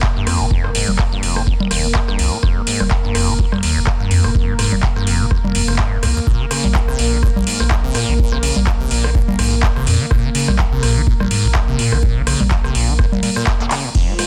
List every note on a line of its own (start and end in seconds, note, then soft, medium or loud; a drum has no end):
0.00 0.23 F1 loud
0.00 0.07 C3 medium
0.00 13.96 A#3 medium
0.00 13.96 A#4 medium
0.00 kick loud
0.00 clap loud
0.00 impact medium
0.16 0.28 G2 medium
0.27 0.37 F2 loud
0.27 0.42 F2 loud
0.27 cross-stick medium
0.27 open hi-hat medium
0.40 0.83 F1 loud
0.40 0.46 A#2 medium
0.51 0.66 F2 medium
0.51 kick loud
0.64 0.70 G#2 medium
0.64 cross-stick medium
0.75 0.90 G#2 medium
0.75 open hi-hat loud
0.88 1.19 F1 loud
0.88 0.92 F2 medium
0.88 low conga medium
0.99 1.03 C3 medium
0.99 kick loud
0.99 cross-stick medium
0.99 clap loud
1.12 1.24 G2 medium
1.23 1.55 F1 medium
1.23 1.38 F2 loud
1.23 open hi-hat medium
1.36 1.42 A#2 medium
1.36 cross-stick medium
1.47 1.54 F2 medium
1.47 kick loud
1.60 1.69 F1 medium
1.60 low conga medium
1.71 2.03 F1 loud
1.71 1.86 D#2 medium
1.71 cross-stick medium
1.71 open hi-hat loud
1.84 1.88 F2 medium
1.95 1.99 C3 medium
1.95 kick loud
1.95 clap loud
2.08 2.16 D#1 medium
2.08 2.20 G2 medium
2.08 cross-stick medium
2.19 2.29 C2 medium
2.19 2.34 F2 loud
2.19 open hi-hat loud
2.32 2.38 A#2 medium
2.43 2.53 F1 loud
2.43 2.58 F2 medium
2.43 kick loud
2.43 cross-stick medium
2.56 2.62 G#2 medium
2.67 2.82 G#2 medium
2.67 open hi-hat loud
2.80 3.11 F1 loud
2.80 2.84 F2 medium
2.80 cross-stick medium
2.80 low conga medium
2.91 2.95 C3 medium
2.91 kick loud
2.91 clap loud
3.04 3.16 G2 medium
3.15 3.47 F1 medium
3.15 3.30 F2 loud
3.15 cross-stick medium
3.15 open hi-hat loud
3.28 3.34 A#2 medium
3.39 3.46 F2 medium
3.39 kick loud
3.52 3.60 F1 loud
3.52 3.61 F1 medium
3.52 cross-stick medium
3.52 low conga medium
3.63 3.78 D#2 medium
3.63 open hi-hat loud
3.76 4.07 F1 loud
3.76 3.80 F2 medium
3.87 3.91 C3 medium
3.87 kick loud
3.87 cross-stick medium
3.87 clap loud
4.00 4.12 G2 medium
4.11 4.26 F2 loud
4.11 4.21 F2 loud
4.11 open hi-hat loud
4.24 4.67 F1 loud
4.24 4.30 A#2 medium
4.24 cross-stick medium
4.35 4.50 F2 medium
4.35 kick loud
4.48 4.54 G#2 medium
4.59 4.74 G#2 medium
4.59 cross-stick medium
4.59 open hi-hat loud
4.72 5.03 F1 loud
4.72 4.76 F2 medium
4.72 low conga medium
4.83 4.87 C3 medium
4.83 kick loud
4.83 clap loud
4.96 5.08 G2 medium
4.96 cross-stick medium
5.07 5.39 F1 medium
5.07 5.22 F2 loud
5.07 open hi-hat medium
5.20 5.26 A#2 medium
5.31 5.38 F2 medium
5.31 kick loud
5.31 cross-stick medium
5.44 5.53 F1 medium
5.44 low conga medium
5.55 5.87 F1 loud
5.55 5.62 F2 medium
5.55 open hi-hat loud
5.68 5.80 F1 medium
5.68 cross-stick medium
5.79 5.94 G#2 medium
5.79 kick loud
5.79 clap loud
5.92 6.00 D#1 medium
5.92 5.98 G2 medium
6.03 6.13 C2 medium
6.03 6.07 G2 medium
6.03 cross-stick medium
6.03 open hi-hat loud
6.16 6.20 D#2 medium
6.27 6.37 A#1 loud
6.27 6.42 A#2 medium
6.27 kick loud
6.40 6.46 C#3 medium
6.51 6.66 C#3 medium
6.51 cross-stick medium
6.51 open hi-hat loud
6.64 6.95 A#1 loud
6.64 6.68 A#2 medium
6.64 low conga medium
6.75 6.79 F3 medium
6.75 kick loud
6.75 clap loud
6.88 7.00 C3 medium
6.88 cross-stick medium
6.99 7.31 A#1 medium
6.99 7.14 A#2 loud
6.99 open hi-hat medium
7.12 7.18 D#3 medium
7.23 7.30 A#2 medium
7.23 kick loud
7.23 cross-stick medium
7.36 7.45 A#1 medium
7.36 7.44 A#1 loud
7.36 low conga medium
7.47 7.62 G#2 medium
7.47 open hi-hat loud
7.60 7.91 A#1 loud
7.60 7.64 A#2 medium
7.60 cross-stick medium
7.71 7.75 F3 medium
7.71 kick loud
7.71 clap loud
7.84 7.96 C3 medium
7.95 8.05 A#2 loud
7.95 8.10 A#2 loud
7.95 cross-stick medium
7.95 open hi-hat medium
8.08 8.51 A#1 loud
8.08 8.14 D#3 medium
8.19 8.34 A#2 medium
8.19 kick loud
8.32 8.38 C#3 medium
8.32 cross-stick medium
8.43 8.58 C#3 medium
8.43 open hi-hat loud
8.56 8.87 A#1 loud
8.56 8.60 A#2 medium
8.56 low conga medium
8.67 8.71 F3 medium
8.67 kick loud
8.67 cross-stick medium
8.67 clap loud
8.80 8.92 C3 medium
8.91 9.23 A#1 medium
8.91 9.06 A#2 loud
8.91 open hi-hat medium
9.04 9.10 D#3 medium
9.04 cross-stick medium
9.15 9.22 A#2 medium
9.15 kick loud
9.28 9.37 A#1 medium
9.28 low conga loud
9.39 9.71 A#1 loud
9.39 9.54 G#2 medium
9.39 cross-stick medium
9.39 open hi-hat loud
9.52 9.56 A#2 medium
9.63 9.67 F3 medium
9.63 kick loud
9.63 clap loud
9.76 9.84 G#1 medium
9.76 9.88 C3 medium
9.76 cross-stick medium
9.87 9.97 F2 medium
9.87 10.02 A#2 loud
9.87 open hi-hat medium
10.00 10.06 D#3 medium
10.11 10.21 A#1 loud
10.11 10.26 A#2 medium
10.11 kick loud
10.11 cross-stick medium
10.24 10.30 C#3 medium
10.35 10.50 C#3 medium
10.35 open hi-hat loud
10.48 10.79 A#1 loud
10.48 10.52 A#2 medium
10.48 cross-stick medium
10.48 low conga medium
10.59 10.63 F3 medium
10.59 kick loud
10.59 clap loud
10.72 10.84 C3 medium
10.83 11.15 A#1 medium
10.83 10.98 A#2 loud
10.83 cross-stick medium
10.83 open hi-hat medium
10.96 11.02 D#3 medium
11.07 11.14 A#2 medium
11.07 kick loud
11.20 11.29 A#1 medium
11.20 11.28 A#1 loud
11.20 cross-stick medium
11.20 low conga loud
11.31 11.46 G#2 medium
11.31 open hi-hat loud
11.44 11.75 A#1 loud
11.44 11.48 A#2 medium
11.55 11.59 F3 medium
11.55 kick loud
11.55 cross-stick medium
11.55 clap loud
11.68 11.80 C3 medium
11.79 11.94 A#2 loud
11.79 11.89 A#2 loud
11.79 open hi-hat medium
11.92 12.35 A#1 loud
11.92 11.98 D#3 medium
11.92 cross-stick medium
12.03 12.18 A#2 medium
12.03 kick loud
12.16 12.22 C#3 medium
12.27 12.42 C#3 medium
12.27 cross-stick medium
12.27 open hi-hat loud
12.40 12.70 A#1 loud
12.40 12.44 A#2 medium
12.40 low conga medium
12.51 12.55 F3 medium
12.51 kick loud
12.51 clap loud
12.64 12.76 C3 medium
12.64 cross-stick medium
12.75 13.07 A#1 medium
12.75 12.90 A#2 loud
12.75 open hi-hat medium
12.88 12.94 D#3 medium
12.99 13.06 A#2 medium
12.99 kick loud
12.99 cross-stick medium
13.12 13.21 A#1 medium
13.12 low conga medium
13.23 13.30 A#2 medium
13.23 open hi-hat loud
13.23 low conga medium
13.36 13.45 A#2 loud
13.36 cross-stick medium
13.47 kick loud
13.47 clap loud
13.60 13.68 F1 loud
13.60 13.66 A#3 medium
13.60 clap soft
13.71 13.86 C#3 medium
13.71 clap medium
13.71 open hi-hat medium
13.84 13.90 A#2 medium
13.95 14.05 F1 loud
13.95 14.10 F2 medium
13.95 14.27 F3 medium
13.95 14.27 F4 medium
13.95 kick loud
13.95 crash medium
14.08 14.14 G#2 medium
14.19 14.27 G#2 medium
14.19 cross-stick medium
14.19 open hi-hat loud